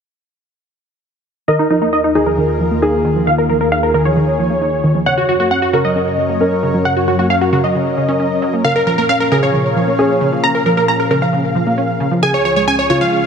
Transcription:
1.48 analog synth pad D#2 D#3 A#3 F4 A#4, synth pluck D#3, grand piano A#4, supersaw synth D#5
1.59 supersaw synth D#4
1.70 synth pluck F3, supersaw synth D#4
1.82 synth pluck A#3, supersaw synth D#4
1.93 synth pluck D#4, supersaw synth D#5
2.04 supersaw synth D#4
2.15 synth pluck D#3, supersaw synth D#4, grand piano G#4
2.26 synth pluck F3, supersaw synth A#4
2.38 synth pluck D#3
2.60 synth pluck F3
2.71 synth pluck A#3
2.82 synth pluck D#4, grand piano G#4
3.05 synth pluck D#3
3.16 synth pluck F3
3.27 synth pluck D#3, analog synth pad G#4, supersaw synth F5
3.38 supersaw synth A#4
3.49 synth pluck F3, supersaw synth A#4
3.61 synth pluck A#3, supersaw synth A#4
3.72 synth pluck D#4, supersaw synth F5
3.83 supersaw synth A#4
3.94 synth pluck D#3, supersaw synth A#4
4.05 synth pluck F3, supersaw synth C#5
4.17 synth pluck D#3
4.39 synth pluck F3
4.50 synth pluck A#3
4.61 synth pluck D#4
4.84 synth pluck D#3
4.95 synth pluck F3
5.06 analog synth pad F#2 F#3 C#4 A#4 C#5, synth pluck C#3, grand piano C#5, supersaw synth F#5
5.17 supersaw synth F#4
5.29 synth pluck F#3, supersaw synth F#4
5.40 synth pluck A#3, supersaw synth F#4
5.51 synth pluck C#4, supersaw synth F#5
5.62 supersaw synth F#4
5.73 synth pluck C#3, supersaw synth F#4, grand piano A#4
5.85 synth pluck F#3, supersaw synth D#5
5.96 synth pluck C#3
6.18 synth pluck F#3
6.29 synth pluck A#3
6.41 synth pluck C#4, grand piano A#4
6.63 synth pluck C#3
6.74 synth pluck F#3
6.85 synth pluck C#3, supersaw synth F#5
6.97 supersaw synth F#4
7.08 synth pluck F#3, supersaw synth F#4
7.19 synth pluck A#3, supersaw synth F#4
7.30 synth pluck C#4, supersaw synth F5
7.41 supersaw synth F#4
7.52 synth pluck C#3, supersaw synth F#4
7.64 synth pluck F#3, supersaw synth D#5
7.75 synth pluck C#3
7.97 synth pluck C#3
8.08 synth pluck C#4
8.20 synth pluck C#4
8.42 synth pluck F#3
8.53 synth pluck A#3
8.64 analog synth pad A#2 F3 F5, synth pluck C#3, grand piano A#4, supersaw synth F5
8.76 supersaw synth A#4
8.87 synth pluck F3, supersaw synth A#4
8.98 synth pluck A#3, supersaw synth A#4
9.09 synth pluck C#4, supersaw synth F5
9.20 supersaw synth A#4
9.31 synth pluck C#3, grand piano G#4, supersaw synth A#4
9.43 synth pluck F3, supersaw synth C#5
9.54 synth pluck C#3
9.76 synth pluck F3
9.87 synth pluck A#3
9.99 synth pluck C#4, grand piano G#4
10.21 synth pluck C#3
10.32 synth pluck F3
10.43 synth pluck C#3, supersaw synth A#5
10.55 supersaw synth A#4
10.66 synth pluck F3, supersaw synth A#4
10.77 synth pluck A#3, supersaw synth A#4
10.88 synth pluck C#4, supersaw synth A#5
11.00 supersaw synth A#4
11.11 synth pluck C#3, supersaw synth A#4
11.22 synth pluck F3, supersaw synth F5
11.33 synth pluck C#3
11.55 synth pluck F3
11.67 synth pluck A#3
11.78 synth pluck C#4
12.00 synth pluck C#3
12.11 synth pluck F3
12.23 analog synth pad C#2 C#3 G#3 F4 G#4, synth pluck C#3, grand piano G#4, supersaw synth G#5
12.34 supersaw synth C#5
12.45 synth pluck F3, supersaw synth C#5
12.56 synth pluck G#3, supersaw synth C#5
12.67 synth pluck C#4, supersaw synth G#5
12.79 supersaw synth C#5
12.90 synth pluck C#3, grand piano F4, supersaw synth C#5
13.01 synth pluck F3, supersaw synth F5
13.12 synth pluck C#3

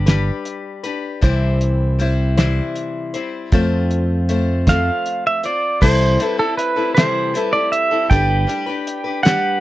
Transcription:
Already playing: fingered electric bass G1
0.06 steel-string acoustic guitar G3 D4 G4 B4, snare, closed hi-hat
0.45 closed hi-hat
0.83 steel-string acoustic guitar D4 G4 B4, closed hi-hat
1.21 fingered electric bass C2, steel-string acoustic guitar C3 E3 G3 C4 E4 C5, kick, closed hi-hat
1.61 closed hi-hat
1.99 steel-string acoustic guitar G3 C4 E4 C5, closed hi-hat
2.37 steel-string acoustic guitar C3 E3 G3 C4 E4 C5, snare, closed hi-hat
2.76 closed hi-hat
3.14 steel-string acoustic guitar G3 C4 E4 C5, closed hi-hat
3.52 fingered electric bass F2, steel-string acoustic guitar F3 A3 C4 F4 C5, kick, closed hi-hat
3.91 closed hi-hat
4.29 steel-string acoustic guitar A3 C4 F4 C5, closed hi-hat
4.67 steel-string acoustic guitar F3 A3 C4 F4 C5, pedal steel guitar F5, kick, snare, closed hi-hat
5.06 closed hi-hat
5.27 pedal steel guitar E5
5.43 steel-string acoustic guitar C4 F4 C5, pedal steel guitar D5, closed hi-hat
5.81 fingered electric bass C2, steel-string acoustic guitar C3 E3 G3 C4 E4 A4, pedal steel guitar C5, kick, crash
6.19 steel-string acoustic guitar G3 C4 E4 A4, closed hi-hat
6.25 pedal steel guitar B4
6.38 steel-string acoustic guitar G3 C4 E4 A4, pedal steel guitar A4
6.57 pedal steel guitar B4, closed hi-hat
6.76 steel-string acoustic guitar G3 C4 E4 A4
6.95 steel-string acoustic guitar C3 E3 G3 C4 E4 A4, pedal steel guitar C5, snare, closed hi-hat
7.34 steel-string acoustic guitar G3 C4 E4 A4, pedal steel guitar B4, closed hi-hat
7.53 steel-string acoustic guitar G3 C4 E4 A4, pedal steel guitar D5
7.72 pedal steel guitar E5, closed hi-hat
7.91 steel-string acoustic guitar G3 C4 E4 A4
8.10 fingered electric bass G1, steel-string acoustic guitar G3 D4 G4 B4, pedal steel guitar G5, kick, closed hi-hat
8.47 steel-string acoustic guitar G3 D4 G4 B4, closed hi-hat
8.66 steel-string acoustic guitar D4 G4 B4
8.87 closed hi-hat
9.04 steel-string acoustic guitar D4 G4 B4
9.23 steel-string acoustic guitar G3 D4 G4 B4, pedal steel guitar F#5, snare, closed hi-hat

